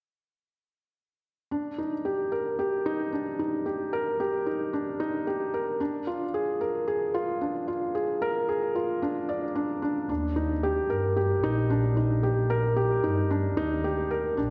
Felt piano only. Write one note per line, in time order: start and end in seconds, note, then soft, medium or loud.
1.51 1.77 D4 medium
1.78 1.94 D#4 medium
2.05 2.31 G4 medium
2.32 2.57 A#4 medium
2.59 2.84 G4 medium
2.86 3.11 D#4 medium
3.12 3.38 D4 medium
3.39 3.65 D#4 medium
3.66 3.91 G4 medium
3.93 4.18 A#4 medium
4.20 4.45 G4 medium
4.46 4.72 D#4 medium
4.73 4.99 D4 medium
5.00 5.25 D#4 medium
5.27 5.52 G4 medium
5.54 5.79 A#4 medium
5.80 6.06 D4 medium
6.07 6.22 F4 medium
6.34 6.60 G#4 medium
6.61 6.86 A#4 medium
6.88 7.13 G#4 medium
7.14 7.40 F4 medium
7.41 7.67 D4 medium
7.68 7.93 F4 medium
7.95 8.20 G#4 medium
8.22 8.47 A#4 medium
8.49 8.74 G#4 medium
8.75 9.01 F4 medium
9.02 9.28 D4 medium
9.29 9.44 D5 medium
9.55 9.81 D4 medium
9.82 10.08 D4 medium
10.09 10.35 D4 medium
10.36 10.51 D#4 medium
10.63 10.88 G4 medium
10.90 11.15 A#4 medium
11.17 11.42 G4 medium
11.43 11.69 D#4 medium
11.70 11.95 D4 medium
11.97 12.22 D#4 medium
12.23 12.49 G4 medium
12.50 12.75 A#4 medium
12.77 13.02 G4 medium
13.04 13.29 D#4 medium
13.31 13.56 D4 medium
13.57 13.83 D#4 loud
13.84 14.10 G4 medium
14.11 14.36 A#4 medium
14.37 14.50 D4 medium